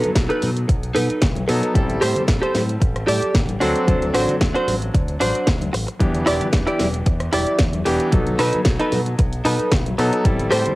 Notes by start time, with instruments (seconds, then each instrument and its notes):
Already playing: electric grand piano F#3 B3 D#4 A4, clean electric guitar B4
0.03 muted fingered electric bass stroke, closed hi-hat, high conga, low conga
0.15 fingered electric bass B1, kick, snare, closed hi-hat
0.29 clean electric guitar D#4 A4 B4, closed hi-hat
0.42 fingered electric bass B2, open hi-hat, high conga
0.57 closed hi-hat
0.68 fingered electric bass B1, muted clean electric guitar stroke, kick, closed hi-hat
0.83 closed hi-hat
0.94 fingered electric bass B2, clean electric guitar D#4 A4 B4, open hi-hat, high conga
1.10 muted fingered electric bass stroke, closed hi-hat
1.22 fingered electric bass B1, kick, snare, closed hi-hat, low conga
1.35 closed hi-hat, high conga
1.48 fingered electric bass B2, electric grand piano F#3 B3 D#4 A4, muted clean electric guitar stroke, open hi-hat
1.62 muted clean electric guitar stroke, closed hi-hat
1.74 fingered electric bass A1, electric grand piano G3 C4 E4 A4, kick, closed hi-hat, high conga
1.89 closed hi-hat, low conga
2.01 fingered electric bass A2, clean electric guitar G4 A4 C5, cross-stick, open hi-hat
2.15 muted fingered electric bass stroke, closed hi-hat, high conga, low conga
2.28 fingered electric bass A1, kick, snare, closed hi-hat
2.42 clean electric guitar G4 A4 C5, closed hi-hat
2.55 fingered electric bass A2, snare, open hi-hat, high conga
2.69 closed hi-hat
2.80 fingered electric bass A1, muted clean electric guitar stroke, kick, closed hi-hat
2.96 cross-stick, closed hi-hat
3.07 fingered electric bass A2, clean electric guitar G4 A4 D5, open hi-hat, high conga
3.22 muted fingered electric bass stroke, closed hi-hat
3.34 fingered electric bass A1, kick, snare, closed hi-hat, low conga
3.48 closed hi-hat, high conga
3.60 fingered electric bass D2, electric grand piano F#3 C4 D4 A4, clean electric guitar D4 F#4 C5, open hi-hat
3.76 closed hi-hat
3.87 fingered electric bass D2, electric grand piano F#3 C4 D4 A4, kick, closed hi-hat, high conga
4.02 closed hi-hat, low conga
4.14 fingered electric bass A1, clean electric guitar D4 F#4 C5, cross-stick, open hi-hat
4.28 muted fingered electric bass stroke, closed hi-hat, high conga, low conga
4.41 fingered electric bass D2, kick, snare, closed hi-hat
4.55 clean electric guitar D4 F#4 C5, closed hi-hat
4.67 fingered electric bass A1, open hi-hat, high conga
4.82 closed hi-hat
4.94 fingered electric bass D2, muted clean electric guitar stroke, kick, closed hi-hat
5.08 closed hi-hat
5.20 fingered electric bass A1, clean electric guitar D4 F#4 C5, open hi-hat, high conga
5.35 muted fingered electric bass stroke, closed hi-hat
5.47 fingered electric bass D2, kick, snare, closed hi-hat, low conga
5.61 closed hi-hat, high conga
5.73 fingered electric bass A1, muted clean electric guitar stroke, open hi-hat
5.87 muted clean electric guitar stroke, closed hi-hat
5.99 fingered electric bass E2, electric grand piano E3 B3 D4 G4, kick, closed hi-hat, high conga
6.15 closed hi-hat, low conga
6.26 fingered electric bass E1, clean electric guitar E4 G4 D5, cross-stick, open hi-hat
6.41 muted fingered electric bass stroke, closed hi-hat, high conga, low conga
6.53 fingered electric bass E2, kick, snare, closed hi-hat
6.67 clean electric guitar E4 G4 D5, closed hi-hat
6.79 fingered electric bass E1, snare, open hi-hat, high conga
6.94 closed hi-hat
7.06 fingered electric bass E2, muted clean electric guitar stroke, kick, closed hi-hat
7.20 cross-stick, closed hi-hat
7.33 fingered electric bass E1, clean electric guitar E4 G4 D5, open hi-hat, high conga
7.47 muted fingered electric bass stroke, closed hi-hat
7.59 fingered electric bass E2, kick, snare, closed hi-hat, low conga
7.73 closed hi-hat, high conga
7.85 fingered electric bass E1, electric grand piano E3 B3 D4 G4, muted clean electric guitar stroke, open hi-hat
8.00 muted clean electric guitar stroke, closed hi-hat
8.11 fingered electric bass B1, electric grand piano F#3 B3 D#4 A4, kick, closed hi-hat, high conga
8.27 closed hi-hat, low conga
8.39 fingered electric bass B2, clean electric guitar D#4 A4 B4, cross-stick, open hi-hat
8.53 muted fingered electric bass stroke, closed hi-hat, high conga, low conga
8.65 fingered electric bass B1, kick, snare, closed hi-hat
8.79 clean electric guitar D#4 A4 B4, closed hi-hat
8.92 fingered electric bass B2, open hi-hat, high conga
9.06 closed hi-hat
9.19 fingered electric bass B1, muted clean electric guitar stroke, kick, closed hi-hat
9.33 closed hi-hat
9.45 fingered electric bass B2, clean electric guitar D#4 A4 B4, open hi-hat, high conga
9.59 muted fingered electric bass stroke, closed hi-hat
9.72 fingered electric bass B1, kick, snare, closed hi-hat, low conga
9.86 closed hi-hat, high conga
9.98 fingered electric bass B2, electric grand piano F#3 B3 D#4 A4, muted clean electric guitar stroke, open hi-hat
10.12 muted clean electric guitar stroke, closed hi-hat
10.24 fingered electric bass A1, electric grand piano G3 C4 E4 A4, kick, closed hi-hat, high conga
10.39 closed hi-hat, low conga
10.50 fingered electric bass A2, clean electric guitar G4 A4 C5, cross-stick, open hi-hat
10.66 muted fingered electric bass stroke, closed hi-hat, high conga, low conga